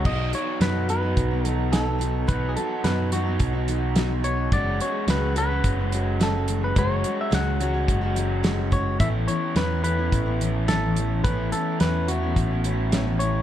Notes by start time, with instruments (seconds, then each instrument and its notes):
0.04 picked electric bass B1, steel-string acoustic guitar B2 F#3 B3 D#4 F#4, clean electric guitar D#5, kick, crash
0.33 steel-string acoustic guitar F#3 B3 D#4 F#4, clean electric guitar C#5, closed hi-hat
0.60 picked electric bass F#2, steel-string acoustic guitar B2 F#3 B3 D#4 F#4, clean electric guitar B4, snare, closed hi-hat
0.89 overdriven electric guitar B2, steel-string acoustic guitar F#3 B3 D#4 F#4, clean electric guitar B4, closed hi-hat
1.03 steel-string acoustic guitar B3 D#4 F#4
1.17 picked electric bass B1, kick, closed hi-hat
1.31 steel-string acoustic guitar B3 D#4 F#4
1.45 steel-string acoustic guitar F#3 B3 D#4 F#4, clean electric guitar A4, closed hi-hat
1.72 steel-string acoustic guitar B2 F#3 B3 D#4 F#4, clean electric guitar A4, snare, closed hi-hat
1.85 steel-string acoustic guitar B3 D#4 F#4
1.98 steel-string acoustic guitar F#3 B3 D#4 F#4, closed hi-hat
2.27 picked electric bass B1, steel-string acoustic guitar B2 F#3 B3 D#4 F#4, clean electric guitar B4, kick, closed hi-hat
2.49 clean electric guitar G#4
2.56 steel-string acoustic guitar F#3 B3 D#4 F#4, clean electric guitar A4, closed hi-hat
2.84 picked electric bass F#2, steel-string acoustic guitar B2 F#3 B3 D#4 F#4, clean electric guitar B4, snare, closed hi-hat
3.12 overdriven electric guitar B2, steel-string acoustic guitar F#3 B3 D#4 F#4, clean electric guitar F#4, closed hi-hat
3.26 steel-string acoustic guitar B3 D#4 F#4
3.40 picked electric bass B1, kick, closed hi-hat
3.53 steel-string acoustic guitar B3 D#4 F#4
3.68 steel-string acoustic guitar F#3 B3 D#4 F#4, closed hi-hat
3.96 steel-string acoustic guitar B2 F#3 B3 D#4 F#4, snare, closed hi-hat
4.09 steel-string acoustic guitar B3 D#4 F#4
4.23 steel-string acoustic guitar F#3 B3 D#4 F#4, clean electric guitar C#5, closed hi-hat
4.52 picked electric bass F#1, steel-string acoustic guitar F#3 G#3 C#4 F#4, clean electric guitar D5, kick, closed hi-hat
4.80 steel-string acoustic guitar F#3 G#3 C#4 F#4, clean electric guitar C#5, closed hi-hat
5.07 picked electric bass C#2, steel-string acoustic guitar F#3 G#3 C#4 F#4, clean electric guitar B4, snare, closed hi-hat
5.36 steel-string acoustic guitar F#3 G#3 C#4 F#4, clean electric guitar B4, closed hi-hat
5.50 steel-string acoustic guitar G#3 C#4 F#4
5.64 picked electric bass F#1, kick, closed hi-hat
5.79 steel-string acoustic guitar G#3 C#4 F#4
5.92 steel-string acoustic guitar F#3 G#3 C#4 F#4, closed hi-hat
6.19 steel-string acoustic guitar F#3 G#3 C#4 F#4, clean electric guitar A4, snare, closed hi-hat
6.34 steel-string acoustic guitar G#3 C#4 F#4
6.48 steel-string acoustic guitar F#3 G#3 C#4 F#4, closed hi-hat
6.64 clean electric guitar B4
6.76 picked electric bass F#1, steel-string acoustic guitar F#3 G#3 C#4 F#4, clean electric guitar C#5, kick, closed hi-hat
7.04 steel-string acoustic guitar F#3 G#3 C#4 F#4, closed hi-hat
7.21 clean electric guitar E5
7.31 picked electric bass C#2, steel-string acoustic guitar F#3 G#3 C#4 F#4, clean electric guitar F#5, snare, closed hi-hat
7.59 steel-string acoustic guitar F#3 G#3 C#4 F#4, closed hi-hat
7.63 overdriven electric guitar F#3
7.74 steel-string acoustic guitar G#3 C#4 F#4
7.88 picked electric bass F#1, kick, closed hi-hat
8.01 steel-string acoustic guitar G#3 C#4 F#4
8.15 steel-string acoustic guitar F#3 G#3 C#4 F#4, closed hi-hat
8.43 steel-string acoustic guitar F#3 G#3 C#4 F#4, snare, closed hi-hat
8.58 steel-string acoustic guitar G#3 C#4 F#4
8.71 steel-string acoustic guitar F#3 G#3 C#4 F#4, clean electric guitar C#5, kick, closed hi-hat
8.99 picked electric bass A1, steel-string acoustic guitar A2 E3 B3 C#4 E4, overdriven electric guitar A3, clean electric guitar E5, kick, closed hi-hat
9.27 steel-string acoustic guitar E3 B3 C#4 E4, clean electric guitar C#5, closed hi-hat
9.56 picked electric bass E2, steel-string acoustic guitar A2 E3 B3 C#4 E4, clean electric guitar B4, snare, closed hi-hat
9.84 overdriven electric guitar A2 A3, steel-string acoustic guitar E3 B3 C#4 E4, clean electric guitar B4, closed hi-hat
9.98 steel-string acoustic guitar B3 C#4 E4
10.12 picked electric bass A1, kick, closed hi-hat
10.26 steel-string acoustic guitar B3 C#4 E4
10.40 steel-string acoustic guitar E3 B3 C#4 E4, closed hi-hat
10.68 steel-string acoustic guitar A2 E3 B3 C#4 E4, clean electric guitar A4, snare, closed hi-hat
10.83 steel-string acoustic guitar B3 C#4 E4
10.96 steel-string acoustic guitar E3 B3 C#4 E4, closed hi-hat
11.24 picked electric bass A1, steel-string acoustic guitar A2 E3 B3 C#4 E4, overdriven electric guitar A3, clean electric guitar B4, kick, closed hi-hat
11.52 steel-string acoustic guitar E3 B3 C#4 E4, clean electric guitar A4, closed hi-hat
11.80 picked electric bass E2, steel-string acoustic guitar A2 E3 B3 C#4 E4, clean electric guitar B4, snare, closed hi-hat
12.08 overdriven electric guitar A2 A3 E4, steel-string acoustic guitar E3 B3 C#4, clean electric guitar F#4, closed hi-hat
12.12 steel-string acoustic guitar E4
12.23 steel-string acoustic guitar B3 C#4 E4
12.36 picked electric bass A1, kick, closed hi-hat
12.51 steel-string acoustic guitar B3 C#4 E4
12.64 steel-string acoustic guitar E3 B3 C#4 E4, closed hi-hat
12.92 steel-string acoustic guitar A2 E3 B3 C#4 E4, snare, closed hi-hat
13.06 steel-string acoustic guitar B3 C#4 E4
13.19 steel-string acoustic guitar E3 B3 C#4 E4, clean electric guitar C#5, closed hi-hat